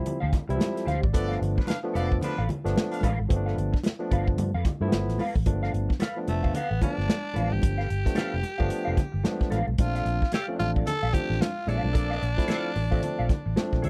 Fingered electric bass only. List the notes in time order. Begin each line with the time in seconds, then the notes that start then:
0.23 D2
0.49 C2
0.87 D2
1.03 G#1
1.14 G1
1.42 G1
1.95 F1
2.38 A1
2.65 G1
3.03 A1
3.19 G#1
3.30 G1
3.58 G1
4.12 G1
4.37 G2
4.54 F2
4.81 G2
4.91 G1
5.08 A1
5.36 A1
5.46 G1
5.73 G1
6.28 F1
6.71 A1
6.98 G1
7.36 A1
7.52 G#1
7.63 G1
7.90 G1
8.34 F1
8.60 G1
8.87 F1
9.14 G1
9.52 A1
9.67 B1
9.79 A#1
10.05 A#1
10.60 A1
11.03 A#1
11.30 A1
11.67 A#1
11.84 B1
11.95 A#1
12.22 A#1
12.76 A1
13.19 A#1
13.46 A1
13.73 A#1
13.84 D2